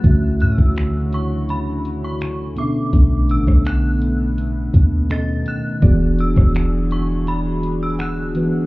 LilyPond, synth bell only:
\new Staff \with { instrumentName = "Synth bell" } { \time 4/4 \key d \lydian \tempo 4 = 83 fis'''8 e'''4 cis'''8 b''8. cis'''8. d'''8~ | d'''8 e'''8 fis'''2 a'''8 fis'''8~ | fis'''8 e'''4 cis'''8 b''8. e'''16 fis'''4 | }